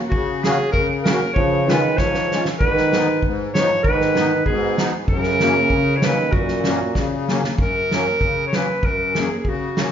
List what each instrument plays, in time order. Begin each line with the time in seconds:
0.09 clarinet F#4, kick
0.13 accordion C#3
0.43 accordion A#3 C#4 F#4, clarinet G#4, snare
0.72 accordion C#3, clarinet A#4, kick
1.04 accordion A#3 C#4 F#4, clarinet A#4, snare
1.33 accordion C#3, euphonium F3, clarinet C#5, kick
1.68 euphonium D#3, accordion G#3 C#4 F4, clarinet B4, snare
1.97 accordion G#2, euphonium F3, clarinet C#5, kick, snare
2.14 snare
2.31 accordion G#3 C#4 F4, snare
2.45 snare
2.59 accordion G#2, euphonium D#3, clarinet B4, kick
2.77 snare
2.93 accordion G#3 B3 D#4, snare
3.23 accordion G#2, kick
3.54 euphonium F3, clarinet C#5, snare
3.58 accordion G#3 B3 D#4
3.83 euphonium D#3, clarinet B4, kick
3.87 accordion G#2
4.01 snare
4.15 accordion G#3 B3, snare
4.20 accordion D#4
4.46 accordion G#2, euphonium B2, clarinet G#4, kick
4.78 accordion G#3 B3 D#4, snare
5.08 accordion F#2, euphonium C#3, clarinet A#4, kick
5.23 snare
5.40 accordion F#3 A#3 C#4, snare
5.70 accordion C#3, kick
5.96 euphonium F3, clarinet C#5
6.02 euphonium D#3, accordion F#3 A#3, clarinet B4, snare
6.07 accordion C#4
6.32 accordion F#2, euphonium A#2, clarinet F#4, kick
6.48 snare
6.64 accordion F#3 A#3 C#4, snare
6.95 accordion C#3, kick, snare
7.28 accordion F#3 A#3 C#4, snare
7.44 snare
7.58 accordion F#2, clarinet A#4, kick
7.91 accordion F#3 A#3 C#4, snare
8.21 accordion C#3, kick
8.47 clarinet C#5
8.53 accordion F#3 A#3 C#4, clarinet B4, snare
8.83 accordion F#2, clarinet A#4, kick
9.15 accordion F#3 A#3 C#4, snare
9.19 clarinet G#4
9.39 clarinet G#4
9.45 accordion C#3, clarinet F#4, kick
9.77 accordion F#3 A#3 C#4, snare